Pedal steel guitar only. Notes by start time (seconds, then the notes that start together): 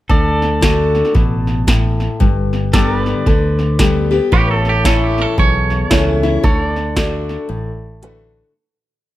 0.09 A4 D5
2.73 A4 D5
2.98 B4
4.33 B4 C#5
4.58 A4
6.44 A4 C#5
6.65 D5